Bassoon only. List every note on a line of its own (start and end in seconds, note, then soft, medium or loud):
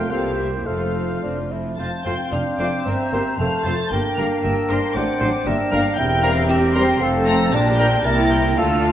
0.00 0.12 A3 medium
0.11 0.67 A#3 medium
0.66 1.16 A3 soft
1.23 1.53 D4 medium
1.51 1.79 E4 soft
2.32 2.88 D4 medium
2.86 3.12 C4 medium
3.13 3.25 A#3 medium
3.40 3.94 A3 medium
3.92 4.95 A#3 medium
4.96 5.49 C4 medium
5.47 5.99 D4 medium
5.98 6.49 E4 medium
6.49 7.00 G4 loud
7.01 7.52 C4 medium
7.54 8.07 D4 medium
8.05 8.58 E4 medium
8.58 8.92 F4 medium